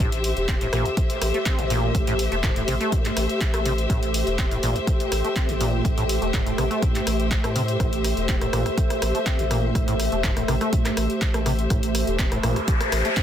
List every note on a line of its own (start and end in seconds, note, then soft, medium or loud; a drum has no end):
0.00 0.33 A1 loud
0.00 13.23 A3 medium
0.00 13.23 G4 medium
0.00 13.23 A4 medium
0.00 13.23 C5 medium
0.00 3.88 E5 medium
0.00 13.23 E5 medium
0.12 closed hi-hat medium
0.24 open hi-hat loud
0.37 0.69 E1 medium
0.37 closed hi-hat soft
0.48 0.55 C4 medium
0.48 kick loud
0.48 clap loud
0.48 closed hi-hat medium
0.61 0.67 A2 medium
0.61 closed hi-hat medium
0.73 0.83 A1 medium
0.73 0.87 A#2 loud
0.73 cross-stick medium
0.73 open hi-hat medium
0.85 0.89 A1 medium
0.85 closed hi-hat soft
0.97 kick loud
0.97 closed hi-hat medium
1.10 closed hi-hat medium
1.22 1.32 A1 medium
1.22 cross-stick medium
1.22 open hi-hat loud
1.34 1.38 A3 medium
1.34 closed hi-hat soft
1.46 1.60 C4 medium
1.46 kick loud
1.46 clap loud
1.46 closed hi-hat medium
1.59 1.91 A1 medium
1.59 1.65 A2 medium
1.59 closed hi-hat medium
1.70 1.96 A#2 loud
1.70 open hi-hat medium
1.95 2.28 A1 loud
1.95 2.05 A2 medium
1.95 kick loud
1.95 closed hi-hat medium
2.07 2.14 A2 loud
2.07 closed hi-hat medium
2.19 open hi-hat loud
2.32 2.65 E1 loud
2.32 2.36 A3 medium
2.32 closed hi-hat soft
2.43 2.50 A2 loud
2.43 kick loud
2.43 clap loud
2.43 closed hi-hat medium
2.56 2.63 A2 medium
2.56 closed hi-hat medium
2.68 2.78 A1 medium
2.68 2.75 C3 loud
2.68 open hi-hat medium
2.81 2.94 A3 loud
2.81 closed hi-hat soft
2.92 3.06 A2 medium
2.92 kick loud
2.92 closed hi-hat medium
3.05 3.11 G2 loud
3.05 clap soft
3.05 closed hi-hat medium
3.17 3.27 A1 medium
3.17 cross-stick medium
3.17 open hi-hat loud
3.29 closed hi-hat soft
3.41 kick loud
3.41 clap loud
3.41 closed hi-hat medium
3.54 3.87 A1 medium
3.54 3.60 A3 medium
3.54 cross-stick medium
3.54 closed hi-hat medium
3.65 3.72 C3 loud
3.65 open hi-hat medium
3.78 closed hi-hat soft
3.90 4.23 A1 loud
3.90 4.00 A2 medium
3.90 7.79 G5 medium
3.90 kick loud
3.90 closed hi-hat medium
4.03 closed hi-hat soft
4.14 open hi-hat loud
4.27 4.60 E1 medium
4.27 closed hi-hat soft
4.39 4.46 C4 medium
4.39 kick loud
4.39 clap loud
4.39 closed hi-hat medium
4.51 4.58 A2 medium
4.51 closed hi-hat soft
4.63 4.73 A1 medium
4.63 4.77 A#2 loud
4.63 open hi-hat medium
4.76 4.80 A1 medium
4.76 closed hi-hat soft
4.87 kick loud
4.87 closed hi-hat medium
5.00 closed hi-hat medium
5.12 5.22 A1 medium
5.12 cross-stick medium
5.12 open hi-hat loud
5.24 5.28 A3 medium
5.24 closed hi-hat soft
5.36 5.50 C4 medium
5.36 kick loud
5.36 clap loud
5.36 closed hi-hat medium
5.49 5.82 A1 loud
5.49 5.55 A2 medium
5.49 closed hi-hat medium
5.61 5.86 A#2 loud
5.61 open hi-hat medium
5.85 6.18 A1 loud
5.85 5.95 A2 medium
5.85 kick loud
5.85 closed hi-hat medium
5.97 6.04 A2 loud
5.97 closed hi-hat soft
6.09 open hi-hat loud
6.22 6.55 E1 medium
6.22 6.26 A3 medium
6.22 closed hi-hat soft
6.34 6.41 A2 loud
6.34 kick loud
6.34 clap loud
6.34 closed hi-hat medium
6.46 6.53 A2 medium
6.46 closed hi-hat soft
6.58 6.69 A1 medium
6.58 6.65 C3 loud
6.58 cross-stick medium
6.58 open hi-hat medium
6.70 6.84 A3 loud
6.70 closed hi-hat soft
6.82 6.96 A2 medium
6.82 kick loud
6.82 closed hi-hat medium
6.95 7.01 G2 loud
6.95 clap soft
6.95 closed hi-hat soft
7.07 7.40 A1 medium
7.07 cross-stick medium
7.07 open hi-hat loud
7.20 closed hi-hat soft
7.31 kick loud
7.31 clap loud
7.31 closed hi-hat medium
7.44 7.77 A2 loud
7.44 7.50 A3 medium
7.44 cross-stick medium
7.44 closed hi-hat medium
7.55 7.63 C3 loud
7.55 open hi-hat loud
7.68 closed hi-hat soft
7.80 8.14 A1 loud
7.80 7.90 A2 medium
7.80 11.69 E5 medium
7.80 kick loud
7.80 cross-stick medium
7.80 closed hi-hat medium
7.93 closed hi-hat soft
8.04 cross-stick soft
8.04 open hi-hat loud
8.17 8.50 E1 medium
8.17 closed hi-hat soft
8.29 8.36 C4 medium
8.29 kick loud
8.29 clap loud
8.29 closed hi-hat medium
8.41 8.48 A2 medium
8.41 cross-stick medium
8.41 closed hi-hat soft
8.53 8.64 A1 medium
8.53 8.67 A#2 loud
8.53 cross-stick medium
8.53 open hi-hat medium
8.66 8.70 A1 medium
8.66 cross-stick soft
8.66 closed hi-hat soft
8.78 kick loud
8.78 closed hi-hat medium
8.90 cross-stick medium
8.90 closed hi-hat soft
9.02 9.12 A1 medium
9.02 cross-stick medium
9.02 open hi-hat loud
9.15 9.18 A3 medium
9.15 closed hi-hat soft
9.26 9.40 C4 medium
9.26 kick loud
9.26 cross-stick soft
9.26 clap loud
9.26 closed hi-hat medium
9.39 9.72 A1 loud
9.39 9.45 A2 medium
9.39 closed hi-hat soft
9.51 9.77 A#2 loud
9.51 cross-stick medium
9.51 open hi-hat medium
9.75 10.09 A1 loud
9.75 9.86 A2 medium
9.75 kick loud
9.75 cross-stick medium
9.75 closed hi-hat medium
9.88 9.94 A2 loud
9.88 closed hi-hat soft
10.00 cross-stick soft
10.00 open hi-hat loud
10.12 10.45 E1 medium
10.12 10.16 A3 medium
10.12 closed hi-hat soft
10.24 10.31 A2 loud
10.24 kick loud
10.24 clap loud
10.24 closed hi-hat medium
10.37 10.43 A2 medium
10.37 cross-stick medium
10.37 closed hi-hat medium
10.48 10.59 A1 medium
10.48 10.55 C3 loud
10.48 cross-stick medium
10.48 open hi-hat medium
10.61 10.74 A3 loud
10.61 cross-stick soft
10.61 closed hi-hat soft
10.73 10.87 A2 medium
10.73 kick loud
10.73 closed hi-hat medium
10.85 10.92 G2 loud
10.85 cross-stick medium
10.85 clap soft
10.85 closed hi-hat medium
10.97 11.08 A1 medium
10.97 cross-stick medium
10.97 open hi-hat loud
11.10 closed hi-hat soft
11.21 kick loud
11.21 cross-stick soft
11.21 clap loud
11.21 closed hi-hat medium
11.34 11.67 A1 medium
11.34 11.41 A3 medium
11.34 cross-stick medium
11.34 closed hi-hat medium
11.46 11.53 C3 loud
11.46 cross-stick medium
11.46 open hi-hat medium
11.59 closed hi-hat soft
11.70 12.04 A1 loud
11.70 11.81 A2 medium
11.70 13.23 A5 medium
11.70 kick loud
11.70 cross-stick medium
11.70 closed hi-hat medium
11.70 riser medium
11.83 closed hi-hat medium
11.95 cross-stick soft
11.95 open hi-hat medium
12.07 12.40 E1 loud
12.07 closed hi-hat soft
12.19 12.26 C4 medium
12.19 kick loud
12.19 clap loud
12.19 closed hi-hat medium
12.32 12.38 A2 medium
12.32 cross-stick medium
12.32 closed hi-hat medium
12.43 12.54 A1 medium
12.43 12.58 A#2 loud
12.43 cross-stick medium
12.43 open hi-hat medium
12.56 12.60 A1 medium
12.56 cross-stick soft
12.56 closed hi-hat soft
12.68 kick loud
12.68 closed hi-hat medium
12.81 cross-stick medium
12.81 closed hi-hat medium
12.92 13.03 A1 medium
12.92 cross-stick medium
12.92 open hi-hat loud
13.05 13.09 A3 medium
13.05 closed hi-hat soft
13.17 13.23 C4 medium
13.17 kick loud
13.17 cross-stick soft
13.17 clap loud
13.17 closed hi-hat medium